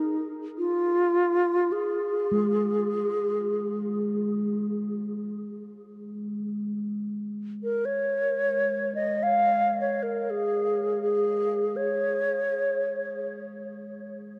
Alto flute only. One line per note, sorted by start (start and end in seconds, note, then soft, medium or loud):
0.00 0.32 D#4 medium
0.58 1.73 F4 medium
1.72 4.58 G#4 medium
7.63 7.87 A#4 medium
7.85 8.94 C#5 medium
8.95 9.24 D#5 medium
9.23 9.80 F5 medium
9.80 10.04 C#5 medium
10.03 10.31 A#4 medium
10.30 11.01 G#4 medium
11.02 11.78 G#4 medium
11.76 13.44 C#5 medium